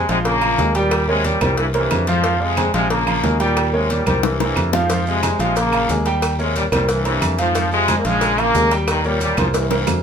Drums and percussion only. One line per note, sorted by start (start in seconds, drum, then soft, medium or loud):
0.08 cowbell medium
0.08 high conga soft
0.08 short guiro medium
0.25 cowbell loud
0.25 high conga soft
0.25 low agogo medium
0.25 long guiro medium
0.41 high conga soft
0.41 low agogo loud
0.41 claves medium
0.58 cowbell medium
0.58 high conga medium
0.58 low timbale medium
0.58 short guiro medium
0.75 cowbell medium
0.75 high conga soft
0.75 low agogo medium
0.75 short guiro medium
0.91 cowbell loud
0.91 high conga soft
0.91 low agogo loud
0.91 long guiro medium
0.91 claves medium
1.08 high conga soft
1.25 cowbell medium
1.25 high conga medium
1.25 low agogo medium
1.25 short guiro medium
1.41 cowbell medium
1.41 high conga soft
1.41 low conga medium
1.41 low agogo loud
1.41 short guiro medium
1.41 claves medium
1.57 cowbell loud
1.57 high conga soft
1.57 long guiro medium
1.74 cowbell medium
1.74 high conga soft
1.74 low agogo loud
1.91 cowbell medium
1.91 high conga medium
1.91 low timbale medium
1.91 low agogo loud
1.91 short guiro medium
1.91 claves medium
2.07 cowbell medium
2.07 high conga soft
2.07 short guiro medium
2.24 cowbell loud
2.24 high conga soft
2.24 low agogo medium
2.24 long guiro medium
2.41 high conga soft
2.57 cowbell medium
2.57 high conga loud
2.57 low agogo loud
2.57 short guiro medium
2.57 claves medium
2.74 cowbell medium
2.74 high conga soft
2.74 short guiro medium
2.90 cowbell loud
2.90 high conga soft
2.90 low agogo medium
2.90 long guiro medium
3.07 high conga soft
3.07 low agogo loud
3.07 claves medium
3.24 cowbell medium
3.24 high conga medium
3.24 low timbale medium
3.24 short guiro medium
3.40 cowbell medium
3.40 high conga soft
3.40 low agogo medium
3.40 short guiro medium
3.57 cowbell loud
3.57 high conga soft
3.57 low agogo loud
3.57 long guiro medium
3.57 claves medium
3.74 high conga soft
3.90 cowbell medium
3.90 high conga medium
3.90 low agogo medium
3.90 short guiro medium
4.06 cowbell medium
4.06 high conga soft
4.06 low conga loud
4.06 low agogo loud
4.06 short guiro medium
4.06 claves medium
4.23 cowbell loud
4.23 high bongo loud
4.23 high conga soft
4.23 long guiro medium
4.40 cowbell medium
4.40 high bongo loud
4.40 high conga soft
4.40 low agogo medium
4.56 cowbell medium
4.56 high conga medium
4.56 low agogo loud
4.56 short guiro medium
4.56 claves medium
4.73 cowbell medium
4.73 low bongo loud
4.73 high conga soft
4.73 short guiro medium
4.90 cowbell loud
4.90 high conga soft
4.90 low agogo medium
4.90 long guiro medium
4.90 maracas medium
5.06 high conga soft
5.06 maracas soft
5.23 cowbell medium
5.23 high conga loud
5.23 low agogo loud
5.23 short guiro medium
5.23 claves medium
5.23 maracas medium
5.39 cowbell medium
5.39 high conga soft
5.39 short guiro medium
5.39 maracas soft
5.56 cowbell loud
5.56 high conga soft
5.56 low agogo medium
5.56 long guiro medium
5.56 maracas medium
5.72 high conga soft
5.72 low agogo loud
5.72 claves medium
5.72 maracas soft
5.89 cowbell medium
5.89 high conga medium
5.89 low timbale medium
5.89 short guiro medium
5.89 maracas medium
6.05 cowbell medium
6.05 high conga soft
6.05 low agogo medium
6.05 short guiro medium
6.05 maracas soft
6.22 cowbell loud
6.22 high conga soft
6.22 low agogo loud
6.22 long guiro medium
6.22 claves medium
6.22 maracas medium
6.39 high conga soft
6.39 maracas soft
6.55 cowbell medium
6.55 high conga medium
6.55 low agogo medium
6.55 short guiro medium
6.55 maracas medium
6.72 cowbell medium
6.72 high conga soft
6.72 low conga medium
6.72 low agogo loud
6.72 short guiro medium
6.72 claves medium
6.72 maracas soft
6.89 cowbell loud
6.89 high conga soft
6.89 long guiro medium
6.89 maracas medium
7.05 cowbell medium
7.05 high conga soft
7.05 low agogo medium
7.05 maracas soft
7.22 cowbell medium
7.22 high conga medium
7.22 low agogo loud
7.22 short guiro medium
7.22 claves medium
7.22 maracas medium
7.38 cowbell medium
7.38 high conga soft
7.38 short guiro medium
7.38 maracas soft
7.55 cowbell loud
7.55 high conga soft
7.55 low agogo medium
7.55 long guiro medium
7.55 maracas medium
7.72 high conga soft
7.72 maracas soft
7.88 cowbell medium
7.88 high conga loud
7.88 low agogo loud
7.88 short guiro medium
7.88 claves medium
7.88 maracas medium
8.05 cowbell medium
8.05 high conga soft
8.05 short guiro medium
8.05 maracas soft
8.21 cowbell loud
8.21 high conga soft
8.21 low agogo medium
8.21 long guiro medium
8.21 maracas medium
8.38 high conga soft
8.38 low agogo loud
8.38 claves medium
8.38 maracas soft
8.54 cowbell medium
8.54 high conga medium
8.54 low timbale medium
8.54 short guiro medium
8.54 maracas medium
8.71 cowbell medium
8.71 high conga soft
8.71 low agogo medium
8.71 short guiro medium
8.71 maracas soft
8.88 cowbell loud
8.88 high conga soft
8.88 low agogo loud
8.88 long guiro medium
8.88 claves medium
8.88 maracas medium
9.04 high conga soft
9.04 maracas soft
9.21 cowbell medium
9.21 high conga medium
9.21 low agogo medium
9.21 short guiro medium
9.21 maracas medium
9.37 cowbell medium
9.37 high conga soft
9.37 low conga medium
9.37 low agogo loud
9.37 short guiro medium
9.37 claves medium
9.37 maracas soft
9.54 cowbell loud
9.54 high conga soft
9.54 high timbale loud
9.54 long guiro medium
9.54 maracas medium
9.71 cowbell medium
9.71 high bongo medium
9.71 high conga soft
9.71 high timbale medium
9.71 low agogo medium
9.71 maracas soft
9.87 cowbell medium
9.87 low bongo medium
9.87 high conga medium
9.87 low timbale medium
9.87 low agogo loud
9.87 short guiro medium
9.87 claves medium
9.87 maracas medium